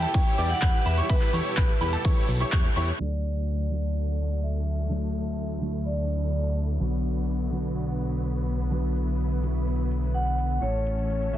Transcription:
Already playing: string section B2 E3 G3 E4 G4, vibraphone G5
0.02 supersaw synth E4 G4 A4, grand piano A5, closed hi-hat, shaker
0.14 analog synth bass E2, supersaw synth E4 G4 C#5, grand piano C#6, kick, closed hi-hat, ride, shaker
0.27 shaker
0.38 analog synth bass E2, supersaw synth E4 G4 D5, grand piano D6, open hi-hat, shaker
0.50 vibraphone F#5, closed hi-hat, shaker
0.62 analog synth bass E2, supersaw synth E4 G4 B4, grand piano B5, kick, clap, closed hi-hat, ride, shaker
0.74 shaker
0.86 analog synth bass E2, supersaw synth E4 G4 B4, vibraphone E5, grand piano B5, open hi-hat, shaker
0.98 supersaw synth E4 G4 C#5, grand piano C#6, closed hi-hat, shaker
1.10 analog synth bass E2, supersaw synth E4 G4 B4, string section A4, vibraphone B4, grand piano B5, kick, closed hi-hat, ride, shaker
1.21 clap, closed hi-hat, shaker
1.33 analog synth bass E2, supersaw synth E4 G4 C#5, grand piano C#6, open hi-hat, shaker
1.45 closed hi-hat, shaker
1.57 analog synth bass B1, supersaw synth E4 G4 B4, grand piano B5, kick, clap, closed hi-hat, ride, shaker
1.69 closed hi-hat, shaker
1.81 analog synth bass E2, supersaw synth E4 G4 B4, grand piano B5, open hi-hat, shaker
1.93 supersaw synth E4 G4 A4, grand piano A5, closed hi-hat, shaker
2.05 analog synth bass E2, supersaw synth E4 G4 C#5, grand piano C#6, kick, closed hi-hat, ride, shaker
2.17 closed hi-hat, shaker
2.29 analog synth bass B1, open hi-hat, shaker
2.40 supersaw synth E4 G4 C#5, grand piano C#6, closed hi-hat, shaker
2.52 analog synth bass E2, supersaw synth E4 G4 C#5, grand piano C#6, kick, clap, closed hi-hat, ride, shaker
2.64 closed hi-hat, shaker
2.76 analog synth bass E2, supersaw synth E4 G4 C#5, grand piano C#6, open hi-hat, shaker
2.88 closed hi-hat, shaker
2.99 analog synth bass D2, clean electric guitar D3 F#3 A3 F#4, string section D3 F#3 A3 F#4 A4, vibraphone D5, crash, downlifter
3.70 clean electric guitar D3 F#3 A3 F#4, shaker
3.84 shaker
3.96 shaker
4.08 shaker
4.20 shaker
4.31 shaker
4.43 vibraphone E5, shaker
4.55 shaker
4.67 shaker
4.79 shaker
4.89 clean electric guitar D3 F#3 A3 F#4, string section E4, shaker
5.15 shaker
5.27 shaker
5.39 shaker
5.51 shaker
5.61 clean electric guitar D3 F#3 A3 F#4, shaker
5.74 shaker
5.86 vibraphone D5, shaker
5.98 shaker
6.10 shaker
6.22 shaker
6.34 shaker
6.46 shaker
6.58 shaker
6.70 shaker
6.80 analog synth bass B1, clean electric guitar D3 F#3 B3 F#4, string section B3 F#4 B4, shaker
7.05 shaker
7.17 shaker
7.29 shaker
7.41 shaker
7.51 clean electric guitar D3 F#3 B3 F#4, shaker
7.65 shaker
7.77 shaker
7.89 shaker
8.01 shaker
8.13 shaker
8.24 shaker
8.36 shaker
8.48 shaker
8.60 shaker
8.70 clean electric guitar D3 F#3 B3 F#4, string section E4, shaker
8.96 shaker
9.08 shaker
9.20 shaker
9.32 shaker
9.42 clean electric guitar D3 F#3 B3 F#4, shaker
9.55 shaker
9.67 shaker
9.79 shaker
9.91 shaker
10.03 shaker
10.14 vibraphone F#5, shaker
10.27 shaker
10.39 shaker
10.51 shaker
10.61 analog synth bass A1, clean electric guitar A2 E3 A3 C#4 A4, string section E3 A3 C#4 A4 C#5, vibraphone C#5, shaker
10.86 shaker
10.98 shaker
11.10 shaker
11.22 shaker
11.32 clean electric guitar A2 E3 A3 C#4 A4, vibraphone E5, shaker

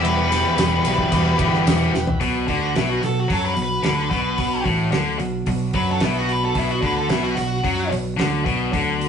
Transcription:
Already playing: distorted electric guitar E2 B2 E3 G3 B3 G4, tonewheel organ B3 E4 G4 B4, overdriven electric guitar E4
0.03 picked electric bass E1, twelve-string acoustic guitar E2 B2 E3 G3 B3 G4, lead electric guitar B4, ride, tambourine
0.31 twelve-string acoustic guitar E3 G3 B3 G4, snare, ride, tambourine
0.57 picked electric bass E1, twelve-string acoustic guitar E3 G3 B3 G4, snare, ride, tambourine
0.85 picked electric bass B1, overdriven electric guitar E2 B2 E3 G3 B3 E4, twelve-string acoustic guitar E3 G3 B3 G4, ride, tambourine
0.98 kick
1.11 picked electric bass E1, distorted electric guitar E2 B2 E3 G3 B3 G4, twelve-string acoustic guitar E2 B2 E3 G3 B3 G4, kick, ride, tambourine
1.37 picked electric bass G1, distorted electric guitar E2 B2 E3 G3 B3 G4, twelve-string acoustic guitar E3 G3 B3 G4, kick, ride
1.54 snare
1.65 picked electric bass E1, twelve-string acoustic guitar E3 G3 B3 G4, snare, ride, tambourine
1.93 picked electric bass E1, twelve-string acoustic guitar E3 G3 B3 G4, snare, tambourine
2.07 floor tom
2.20 picked electric bass B1, twelve-string acoustic guitar B2 F#3 B3 D4 F#4, distorted electric guitar B2, kick, open hi-hat
2.47 picked electric bass D2, distorted electric guitar D3, twelve-string acoustic guitar B3 D4 F#4, lead electric guitar F#4, kick, open hi-hat
2.74 picked electric bass B1, distorted electric guitar B2, twelve-string acoustic guitar F#3 B3 D4 F#4, lead electric guitar E4, snare, open hi-hat
2.90 lead electric guitar F#4
3.01 picked electric bass B1, distorted electric guitar B2, twelve-string acoustic guitar B3 D4 F#4, lead electric guitar A4, snare, open hi-hat
3.20 lead electric guitar F#4
3.28 picked electric bass F#2, twelve-string acoustic guitar B2 F#3 B3 D4 F#4, distorted electric guitar F#3, kick, open hi-hat
3.32 overdriven electric guitar F#3, lead electric guitar A4
3.45 lead electric guitar B4
3.55 picked electric bass B1, distorted electric guitar B2, twelve-string acoustic guitar B3 D4 F#4, open hi-hat
3.62 lead electric guitar B4
3.83 picked electric bass D2, distorted electric guitar D3, twelve-string acoustic guitar F#3 B3 D4 F#4, snare, open hi-hat
4.09 picked electric bass B1, distorted electric guitar B2, twelve-string acoustic guitar B3 D4 F#4, kick, open hi-hat
4.36 twelve-string acoustic guitar B2 F#3 B3 D4 F#4, kick, open hi-hat
4.63 picked electric bass A1, distorted electric guitar A2, twelve-string acoustic guitar B3 D4 F#4, kick, open hi-hat
4.91 picked electric bass D2, distorted electric guitar D3, twelve-string acoustic guitar F#3 B3 D4 F#4, snare, open hi-hat
5.18 picked electric bass B1, distorted electric guitar B2, twelve-string acoustic guitar B3 D4 F#4, open hi-hat
5.46 picked electric bass B1, twelve-string acoustic guitar B2 F#3 B3 D4 F#4, distorted electric guitar B2, kick, open hi-hat
5.72 picked electric bass F#2, distorted electric guitar F#3, twelve-string acoustic guitar B3 D4 F#4, lead electric guitar B4, kick, open hi-hat
5.91 lead electric guitar A4
5.99 picked electric bass B1, distorted electric guitar B2, twelve-string acoustic guitar F#3 B3 D4 F#4, snare, open hi-hat
6.05 lead electric guitar E4
6.18 lead electric guitar F#4
6.27 twelve-string acoustic guitar B3 D4 F#4, open hi-hat
6.32 lead electric guitar B4
6.45 lead electric guitar A4
6.55 picked electric bass B1, distorted electric guitar B2, twelve-string acoustic guitar B2 F#3 B3 D4 F#4, lead electric guitar E4, kick, open hi-hat
6.71 lead electric guitar F#4
6.81 picked electric bass D2, distorted electric guitar D3, twelve-string acoustic guitar B3 D4 F#4, lead electric guitar B4, kick, open hi-hat
6.97 lead electric guitar A4
7.08 picked electric bass B1, distorted electric guitar B2, twelve-string acoustic guitar F#3 B3 D4, lead electric guitar E4, snare, open hi-hat
7.13 twelve-string acoustic guitar F#4
7.23 lead electric guitar F#4
7.36 picked electric bass B1, distorted electric guitar B2, twelve-string acoustic guitar B3 D4 F#4, lead electric guitar F#4, snare, open hi-hat
7.62 picked electric bass F#2, twelve-string acoustic guitar B2 F#3 B3 D4 F#4, distorted electric guitar F#3, kick, open hi-hat
7.90 picked electric bass B1, distorted electric guitar B2, twelve-string acoustic guitar B3 D4 F#4, open hi-hat
8.17 picked electric bass D2, distorted electric guitar D3, twelve-string acoustic guitar F#3 B3 D4 F#4, snare, open hi-hat
8.44 picked electric bass B1, distorted electric guitar B2, twelve-string acoustic guitar B3 D4 F#4, kick, open hi-hat
8.72 picked electric bass D2, twelve-string acoustic guitar B2 F#3 B3 D4 F#4, distorted electric guitar D3, kick, open hi-hat
9.00 twelve-string acoustic guitar B3 D4 F#4, open hi-hat

